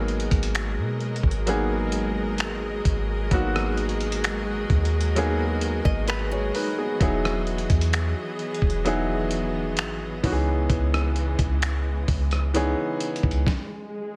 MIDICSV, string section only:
0, 0, Header, 1, 2, 480
1, 0, Start_track
1, 0, Key_signature, 5, "minor"
1, 0, Tempo, 923077
1, 1723, Time_signature, 4, 2, 24, 8
1, 7363, End_track
2, 0, Start_track
2, 0, Title_t, "String section"
2, 0, Program_c, 0, 48
2, 0, Note_on_c, 0, 56, 79
2, 0, Note_on_c, 0, 66, 74
2, 0, Note_on_c, 0, 68, 90
2, 0, Note_on_c, 0, 70, 72
2, 0, Note_on_c, 0, 75, 73
2, 3622, Note_off_c, 0, 56, 0
2, 3622, Note_off_c, 0, 70, 0
2, 3623, Note_off_c, 0, 68, 0
2, 3643, Note_on_c, 0, 52, 84
2, 3643, Note_on_c, 0, 68, 90
2, 3644, Note_on_c, 0, 59, 75
2, 5302, Note_off_c, 0, 66, 0
2, 5306, Note_off_c, 0, 52, 0
2, 5306, Note_off_c, 0, 68, 0
2, 5322, Note_on_c, 0, 52, 84
2, 5323, Note_on_c, 0, 49, 78
2, 5323, Note_on_c, 0, 56, 72
2, 6982, Note_off_c, 0, 75, 0
2, 6983, Note_off_c, 0, 59, 0
2, 6986, Note_off_c, 0, 49, 0
2, 6986, Note_off_c, 0, 52, 0
2, 6986, Note_off_c, 0, 56, 0
2, 7363, End_track
0, 0, End_of_file